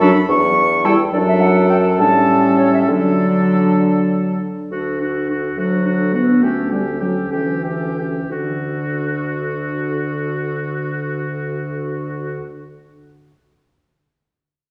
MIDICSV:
0, 0, Header, 1, 6, 480
1, 0, Start_track
1, 0, Key_signature, 2, "major"
1, 0, Tempo, 562852
1, 966, Time_signature, 6, 3, 24, 8
1, 1456, Tempo, 601805
1, 3856, Tempo, 574163
1, 5776, Tempo, 645161
1, 6736, Tempo, 610376
1, 11773, End_track
2, 0, Start_track
2, 0, Title_t, "Flute"
2, 0, Program_c, 0, 73
2, 0, Note_on_c, 0, 83, 114
2, 240, Note_off_c, 0, 83, 0
2, 246, Note_on_c, 0, 85, 115
2, 724, Note_on_c, 0, 79, 100
2, 737, Note_off_c, 0, 85, 0
2, 950, Note_off_c, 0, 79, 0
2, 955, Note_on_c, 0, 74, 108
2, 1006, Note_off_c, 0, 74, 0
2, 1084, Note_on_c, 0, 76, 92
2, 1192, Note_on_c, 0, 78, 97
2, 1205, Note_off_c, 0, 76, 0
2, 1435, Note_off_c, 0, 78, 0
2, 1440, Note_on_c, 0, 79, 94
2, 1495, Note_off_c, 0, 79, 0
2, 1679, Note_on_c, 0, 81, 114
2, 2141, Note_off_c, 0, 81, 0
2, 2146, Note_on_c, 0, 73, 83
2, 2269, Note_off_c, 0, 73, 0
2, 2274, Note_on_c, 0, 76, 89
2, 2322, Note_off_c, 0, 76, 0
2, 2387, Note_on_c, 0, 74, 89
2, 3583, Note_off_c, 0, 74, 0
2, 3879, Note_on_c, 0, 69, 40
2, 4106, Note_off_c, 0, 69, 0
2, 4117, Note_on_c, 0, 69, 33
2, 4344, Note_off_c, 0, 69, 0
2, 4348, Note_on_c, 0, 69, 33
2, 4578, Note_off_c, 0, 69, 0
2, 4597, Note_on_c, 0, 69, 39
2, 4821, Note_off_c, 0, 69, 0
2, 4832, Note_on_c, 0, 69, 39
2, 5055, Note_off_c, 0, 69, 0
2, 5077, Note_on_c, 0, 69, 40
2, 5294, Note_off_c, 0, 69, 0
2, 5297, Note_on_c, 0, 69, 45
2, 5526, Note_off_c, 0, 69, 0
2, 5546, Note_on_c, 0, 69, 35
2, 5781, Note_off_c, 0, 69, 0
2, 5793, Note_on_c, 0, 69, 36
2, 6011, Note_off_c, 0, 69, 0
2, 6023, Note_on_c, 0, 69, 39
2, 6250, Note_off_c, 0, 69, 0
2, 6254, Note_on_c, 0, 69, 31
2, 6493, Note_off_c, 0, 69, 0
2, 6514, Note_on_c, 0, 69, 24
2, 6740, Note_off_c, 0, 69, 0
2, 6752, Note_on_c, 0, 69, 30
2, 9956, Note_off_c, 0, 69, 0
2, 11773, End_track
3, 0, Start_track
3, 0, Title_t, "Oboe"
3, 0, Program_c, 1, 68
3, 6, Note_on_c, 1, 69, 85
3, 92, Note_off_c, 1, 69, 0
3, 723, Note_on_c, 1, 69, 84
3, 808, Note_off_c, 1, 69, 0
3, 966, Note_on_c, 1, 69, 90
3, 1658, Note_off_c, 1, 69, 0
3, 1690, Note_on_c, 1, 69, 83
3, 2395, Note_off_c, 1, 69, 0
3, 2407, Note_on_c, 1, 69, 77
3, 3593, Note_off_c, 1, 69, 0
3, 3857, Note_on_c, 1, 66, 43
3, 4092, Note_off_c, 1, 66, 0
3, 4097, Note_on_c, 1, 66, 37
3, 4332, Note_off_c, 1, 66, 0
3, 4337, Note_on_c, 1, 66, 40
3, 4572, Note_off_c, 1, 66, 0
3, 4584, Note_on_c, 1, 66, 40
3, 4807, Note_off_c, 1, 66, 0
3, 4812, Note_on_c, 1, 66, 39
3, 5045, Note_off_c, 1, 66, 0
3, 5049, Note_on_c, 1, 66, 39
3, 5279, Note_off_c, 1, 66, 0
3, 5285, Note_on_c, 1, 67, 46
3, 5520, Note_off_c, 1, 67, 0
3, 5525, Note_on_c, 1, 67, 42
3, 5763, Note_off_c, 1, 67, 0
3, 5768, Note_on_c, 1, 67, 39
3, 5992, Note_off_c, 1, 67, 0
3, 5996, Note_on_c, 1, 67, 36
3, 6236, Note_off_c, 1, 67, 0
3, 6241, Note_on_c, 1, 67, 31
3, 6487, Note_off_c, 1, 67, 0
3, 6499, Note_on_c, 1, 67, 26
3, 6732, Note_off_c, 1, 67, 0
3, 6745, Note_on_c, 1, 66, 35
3, 9949, Note_off_c, 1, 66, 0
3, 11773, End_track
4, 0, Start_track
4, 0, Title_t, "Clarinet"
4, 0, Program_c, 2, 71
4, 19, Note_on_c, 2, 62, 86
4, 100, Note_off_c, 2, 62, 0
4, 723, Note_on_c, 2, 64, 85
4, 807, Note_off_c, 2, 64, 0
4, 970, Note_on_c, 2, 62, 88
4, 1693, Note_on_c, 2, 61, 78
4, 1705, Note_off_c, 2, 62, 0
4, 2410, Note_off_c, 2, 61, 0
4, 2416, Note_on_c, 2, 62, 77
4, 3598, Note_off_c, 2, 62, 0
4, 3857, Note_on_c, 2, 62, 40
4, 4092, Note_off_c, 2, 62, 0
4, 4097, Note_on_c, 2, 62, 34
4, 4326, Note_off_c, 2, 62, 0
4, 4331, Note_on_c, 2, 62, 39
4, 4569, Note_off_c, 2, 62, 0
4, 4579, Note_on_c, 2, 62, 41
4, 4803, Note_off_c, 2, 62, 0
4, 4808, Note_on_c, 2, 62, 39
4, 5042, Note_off_c, 2, 62, 0
4, 5053, Note_on_c, 2, 62, 42
4, 5281, Note_off_c, 2, 62, 0
4, 5286, Note_on_c, 2, 61, 48
4, 5513, Note_off_c, 2, 61, 0
4, 5518, Note_on_c, 2, 61, 42
4, 5757, Note_off_c, 2, 61, 0
4, 5762, Note_on_c, 2, 61, 37
4, 5982, Note_off_c, 2, 61, 0
4, 5986, Note_on_c, 2, 61, 37
4, 6224, Note_off_c, 2, 61, 0
4, 6228, Note_on_c, 2, 61, 32
4, 6480, Note_off_c, 2, 61, 0
4, 6483, Note_on_c, 2, 61, 26
4, 6724, Note_off_c, 2, 61, 0
4, 6728, Note_on_c, 2, 62, 33
4, 9932, Note_off_c, 2, 62, 0
4, 11773, End_track
5, 0, Start_track
5, 0, Title_t, "French horn"
5, 0, Program_c, 3, 60
5, 9, Note_on_c, 3, 54, 87
5, 94, Note_off_c, 3, 54, 0
5, 723, Note_on_c, 3, 55, 84
5, 807, Note_off_c, 3, 55, 0
5, 957, Note_on_c, 3, 54, 80
5, 1678, Note_on_c, 3, 55, 79
5, 1690, Note_off_c, 3, 54, 0
5, 2395, Note_off_c, 3, 55, 0
5, 2400, Note_on_c, 3, 54, 76
5, 3590, Note_off_c, 3, 54, 0
5, 4581, Note_on_c, 3, 54, 61
5, 5048, Note_on_c, 3, 59, 69
5, 5061, Note_off_c, 3, 54, 0
5, 5284, Note_on_c, 3, 57, 61
5, 5297, Note_off_c, 3, 59, 0
5, 5522, Note_off_c, 3, 57, 0
5, 5527, Note_on_c, 3, 55, 58
5, 5639, Note_off_c, 3, 55, 0
5, 5772, Note_on_c, 3, 54, 53
5, 5877, Note_off_c, 3, 54, 0
5, 6006, Note_on_c, 3, 52, 51
5, 6720, Note_off_c, 3, 52, 0
5, 6728, Note_on_c, 3, 50, 35
5, 9932, Note_off_c, 3, 50, 0
5, 11773, End_track
6, 0, Start_track
6, 0, Title_t, "Bassoon"
6, 0, Program_c, 4, 70
6, 0, Note_on_c, 4, 42, 92
6, 132, Note_off_c, 4, 42, 0
6, 244, Note_on_c, 4, 40, 89
6, 841, Note_off_c, 4, 40, 0
6, 963, Note_on_c, 4, 42, 83
6, 1682, Note_on_c, 4, 45, 82
6, 1694, Note_off_c, 4, 42, 0
6, 2400, Note_on_c, 4, 50, 77
6, 2412, Note_off_c, 4, 45, 0
6, 3614, Note_off_c, 4, 50, 0
6, 3852, Note_on_c, 4, 38, 48
6, 4492, Note_off_c, 4, 38, 0
6, 4574, Note_on_c, 4, 38, 49
6, 5200, Note_off_c, 4, 38, 0
6, 5287, Note_on_c, 4, 38, 52
6, 5926, Note_off_c, 4, 38, 0
6, 6006, Note_on_c, 4, 38, 46
6, 6651, Note_off_c, 4, 38, 0
6, 6729, Note_on_c, 4, 38, 32
6, 9933, Note_off_c, 4, 38, 0
6, 11773, End_track
0, 0, End_of_file